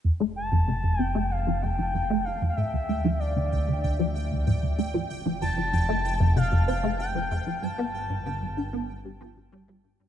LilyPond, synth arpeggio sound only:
\new Staff \with { instrumentName = "Synth arpeggio sound" } { \clef bass \time 4/4 \key f \major \tempo 4 = 95 f,16 a16 r16 f,16 c16 f,16 c'16 a16 r16 f16 f,16 f16 f,16 a16 r16 f,16 | a,16 d,16 a16 f16 r16 d16 d,16 d16 d,16 f16 r16 d,16 a,16 d,16 a16 f16 | r16 f16 f,16 f16 f,16 a16 r16 f,16 c16 f,16 c'16 a16 r16 f16 f,16 f16 | g,16 b16 r16 g,16 d16 g,16 d'16 b16 r16 g16 f16 g,16 g16 g16 g,16 g,16 | }